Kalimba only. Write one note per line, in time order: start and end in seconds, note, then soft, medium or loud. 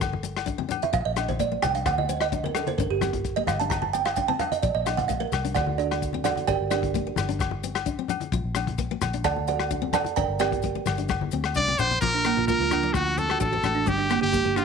0.00 0.22 A4 medium
0.83 0.94 E5 medium
0.94 1.05 F5 loud
1.05 1.17 D#5 medium
1.29 1.40 C5 medium
1.40 1.63 D5 medium
1.63 1.74 G5 loud
1.75 1.86 F5 medium
1.86 1.98 F#5 loud
1.98 2.09 D#5 medium
2.09 2.21 C5 medium
2.21 2.32 D#5 loud
2.44 2.55 A#4 medium
2.55 2.67 A4 loud
2.68 2.78 C5 loud
2.78 2.90 A#4 medium
2.90 2.97 G4 medium
3.36 3.47 D#5 medium
3.47 3.59 F5 medium
3.60 3.71 A5 medium
3.70 3.82 A#5 loud
3.82 3.93 A5 medium
3.93 4.05 G5 loud
4.05 4.17 F5 medium
4.17 4.28 G5 medium
4.28 4.40 A5 loud
4.40 4.51 F5 medium
4.52 4.63 D#5 medium
4.63 4.74 D5 medium
4.75 4.86 D#5 medium
4.86 4.98 F5 medium
4.97 5.09 F#5 medium
5.08 5.20 F5 medium
5.20 5.27 A#4 medium
5.55 5.77 F#4 medium
5.55 5.77 A4 medium
5.55 5.77 D5 medium
5.55 5.78 F#5 medium
5.78 6.21 D4 medium
5.78 6.21 F#4 medium
5.78 6.21 A4 medium
5.78 6.21 D5 medium
6.24 6.47 F#4 medium
6.24 6.47 A4 medium
6.24 6.46 D5 medium
6.24 6.47 F#5 medium
6.47 6.70 G4 medium
6.47 6.70 A#4 medium
6.47 6.69 D5 medium
6.47 6.70 G5 loud
6.71 7.36 D4 medium
6.71 7.36 G4 medium
6.71 7.36 A#4 medium
6.71 7.36 D5 medium
9.24 9.47 A4 medium
9.24 9.47 D5 medium
9.24 9.47 F#5 medium
9.24 9.47 A5 loud
9.48 9.91 F#4 medium
9.48 9.91 A4 medium
9.48 9.91 D5 medium
9.48 9.91 F#5 medium
9.93 10.16 A4 medium
9.93 10.16 D5 medium
9.93 10.17 F#5 medium
9.93 10.16 A5 loud
10.16 10.39 A#4 medium
10.16 10.39 D5 medium
10.16 10.39 G5 medium
10.16 10.39 A#5 loud
10.40 11.06 G4 medium
10.40 11.06 A#4 loud
10.40 11.06 D5 medium
10.40 11.06 G5 loud
12.02 12.12 F3 medium
12.14 12.24 D4 medium
12.25 12.35 A#3 medium
12.37 12.46 F4 medium
12.48 12.58 F4 medium
12.60 12.70 F4 medium
12.72 12.82 D4 medium
12.83 12.93 F3 medium
13.29 13.39 F#4 medium
13.40 13.50 F#4 medium
13.53 13.62 F#4 medium
13.64 13.74 A3 medium
13.75 13.85 D4 medium
13.86 13.97 G3 medium
13.98 14.08 D4 medium
14.10 14.20 A#3 medium
14.21 14.31 G4 medium
14.32 14.43 G4 medium
14.45 14.55 G4 medium
14.56 14.65 D4 medium